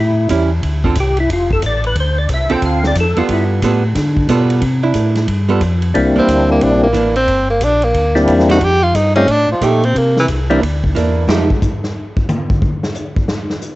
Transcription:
Already playing: A2
0.00 E4
0.29 E2 G3 C#4 E4, kick, hi-hat pedal, ride
0.63 D2, kick, ride
0.84 D3 C4 F4 A4, kick
0.95 C2, kick, hi-hat pedal, ride
1.00 G4
1.17 E4, ride
1.29 F1 F4, kick, ride
1.51 A4, kick
1.62 A1, kick, hi-hat pedal, ride
1.66 D5
1.84 B4, ride
1.95 D2, kick, ride
2.00 C5
2.18 D5
2.29 C2, kick, hi-hat pedal, ride
2.34 E5
2.49 C2 D3 C4 F4 A4 G5, ride
2.62 D2, kick, ride
2.66 F5
2.84 D5, snare
2.95 F2, kick, hi-hat pedal, ride
3.00 A4
3.16 F2 G3 B3 F4 A4, ride
3.29 G2, kick, ride
3.33 E4
3.62 A2 G3 B3 F4 A4, kick, hi-hat pedal, ride
3.95 D3, kick, snare, ride
4.17 kick
4.29 B2 G3 B3 F4 A4, kick, hi-hat pedal, ride
4.50 ride
4.61 C3, kick, ride
4.83 D4 E4
4.94 A2, kick, hi-hat pedal, ride
5.15 snare, ride
5.28 G2, kick, ride
5.49 G3 B3 F4 A4
5.61 F2, kick, hi-hat pedal, ride
5.82 ride
5.94 C2 G3 A#3 C4 D4 E4, kick, ride
6.15 C2 E3 A#3 C4 D4
6.28 D2, kick, hi-hat pedal, ride
6.52 A#3
6.61 A#1 D4, kick, ride
6.83 A#3
6.93 A1 E3 A#3 D4, kick, hi-hat pedal, ride
7.16 C4, ride
7.28 G1, kick, ride
7.50 A#3
7.61 A#1 D4, kick, hi-hat pedal, ride
7.82 A#3, ride
7.94 D2, kick, ride
8.15 G3 A#3 C4 D4 E4, snare
8.27 E2, kick, hi-hat pedal, ride
8.39 snare
8.49 F3 A3 D#4 F#4 G4, snare, ride
8.61 F2 G4, kick, ride
8.83 F4
8.95 G2 D#4, kick, hi-hat pedal, ride
9.15 G3 A3 C4 C#4 D#4 F4, ride
9.28 A2 D4, kick, ride
9.48 A2 F3
9.61 A#2 F3 A3 D#4 G4, kick, hi-hat pedal, ride
9.83 C4, ride
9.95 C3 A#3, kick, ride
10.17 E3, snare
10.28 C2, kick, hi-hat pedal, ride
10.50 E3 G3 A#3 C4 D4 E4, ride
10.62 D2, kick, ride
10.84 kick
10.95 E2 E3 A#3 D4, kick, hi-hat pedal, ride
11.27 F2 F3 A3 D#4 G4, snare
11.50 kick
11.62 kick, hi-hat pedal
11.84 snare
12.17 kick
12.29 hi-hat pedal, high tom
12.50 kick
12.62 kick
12.83 snare
12.95 hi-hat pedal
13.17 kick
13.28 snare
13.50 snare
13.61 hi-hat pedal

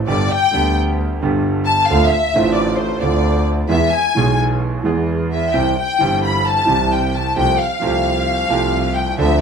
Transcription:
0.07 G1 G2 D3 G3 B3 G4 D5
0.31 G5
0.51 D2 D3 G3 B3 G4
1.21 G1 G2 D3 G3 B3 G4
1.66 A5
1.87 D2 D3 A3 C4 F4 F5
2.08 E5
2.34 A1 A2 D3 A3 C4
2.38 F4
2.54 D5
2.77 C5
3.00 D2 D3 A3 C4 D5
3.05 F4
3.68 E2 E3 G#3 B3 G#4 E5
3.91 G#5
4.15 B1 B2 E3 G#3 B3 G#4
4.84 E2 E3 G#3 B3 G#4
5.32 E5
5.54 C2 C3 E3 G3 C4 G4 G5
5.78 G5
5.99 G1 G2 E3 G3 C4
6.03 G4
6.25 B5
6.47 A5
6.65 C2 C3 E3 G3 C4
6.70 G4
6.93 G5
7.16 A5
7.36 C2 C3 F3 A3 C4 G4 G5
7.61 F5
7.80 C2 C3 F3 A3 C4
7.84 C2 G4
8.48 C2 C3 F3 A3 C4
8.52 G4
8.96 G5
9.18 D2 D3 F3 C4 D4 A4 E5

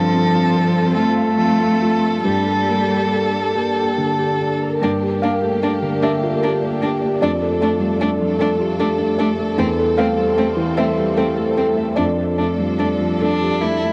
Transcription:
Already playing: G2 F3 C4 F4 A4 C5
0.14 C4 A4
0.35 F4
0.56 A4 C5
0.76 C5
0.96 A3 C4 F4 A4
1.17 F5
1.38 F3
1.60 F4
1.82 F4
2.04 A4
2.24 G2 G3 A#3 D4 G4 A4
2.68 A#3
2.90 G4
3.12 A4 D5
3.34 D5
3.55 A#3 G4
3.76 G5
3.98 D3
4.19 G4
4.40 D4
4.61 A#4
4.81 G2 A#3 D4 G4
5.01 G4 D5
5.21 A#3 D4 A#4 F5
5.42 A3 G4
5.62 A#3 D4
5.82 D3 A#4
6.02 A#3 D4 G4 E5
6.23 F4 A#4
6.42 A#3 D4 G4 A#4
6.62 A#3 G4
6.81 A#3 D4 G4 G5
7.02 A#3 D5
7.21 F2 A3 D4 A4 D5
7.41 A4
7.60 A3 D4 F4
7.80 G3 D4
8.00 A3 D4
8.19 F3 F4
8.39 A3 D4 A4
8.59 F4 G4
8.79 A3 D4 F4 A4
8.98 A3 D4
9.18 A3 D4 A4 D5
9.38 A3 A4
9.57 E2 G3 A3 C4 A4
9.79 A4
9.97 A3 C4 C5 F5
10.17 G3 A4
10.36 A3 C4
10.56 E3 C5
10.76 A3 C4 A4 E5
10.96 G4 C5
11.16 A3 C4 A4 C5
11.36 A3 A4
11.56 A3 C4 A4 G5
11.77 A3 E5
11.96 F2 F3 A3 D4 A4 D5
12.17 A4
12.38 A3 D4
12.58 G3 D4
12.79 A3 D4
13.00 F3
13.20 A3 D4 A4
13.41 G4
13.61 A3 E4
13.82 A3 D4

